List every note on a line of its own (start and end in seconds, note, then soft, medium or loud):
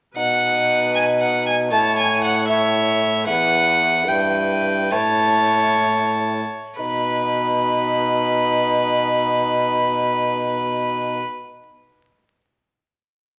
0.16 1.73 B2 medium
0.16 1.68 D#4 medium
0.16 1.68 B4 medium
0.16 0.91 F#5 medium
0.95 1.03 G#5 medium
1.21 1.46 F#5 medium
1.46 1.54 G#5 medium
1.72 3.26 A2 medium
1.72 2.48 E4 medium
1.72 2.48 C#5 medium
1.72 1.97 A5 medium
1.98 2.23 G#5 medium
2.24 2.47 F#5 medium
2.48 3.26 E4 medium
2.48 3.26 C#5 medium
2.48 3.25 E5 medium
3.27 4.09 E2 medium
3.27 4.03 E4 medium
3.27 4.03 B4 medium
3.27 4.09 F#5 loud
4.07 4.92 G2 medium
4.07 4.90 E4 medium
4.07 4.94 B4 medium
4.07 4.92 G5 medium
4.92 6.43 A2 medium
4.92 6.43 E4 medium
4.92 6.54 C#5 medium
4.92 6.44 A5 medium
6.79 11.22 B2 medium
6.79 11.21 D#4 medium
6.79 11.21 B4 medium
6.79 11.22 B5 medium